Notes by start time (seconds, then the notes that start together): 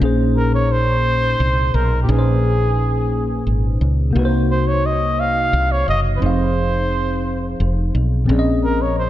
Already playing: A#2
0.00 A#1 A#3 C#4 D#4 G#4
0.05 C5
0.37 A#4
0.54 C#5
0.72 C5
1.40 C2
1.74 B1 A#4
2.02 A#2 A#3 G4
2.07 A#1 C#4 D#4 G#4
2.12 B4
2.19 C5
3.47 G#1
3.81 C#2
4.11 C3 A#3
4.15 C2 D#4 F#4 B4
4.25 C5
4.51 C5
4.68 C#5
4.86 D#5
5.20 F5
5.53 C2
5.72 C#5
5.88 F#1 D#5
6.16 F3 B4
6.20 F1 C4 D#4 C5
6.24 G#4 F5
7.60 F1
7.95 B1
8.24 A#2 F3 C4
8.29 A#1 C#4 G#4 D5
8.39 D#5
8.64 A#4
8.82 C#5
8.98 C5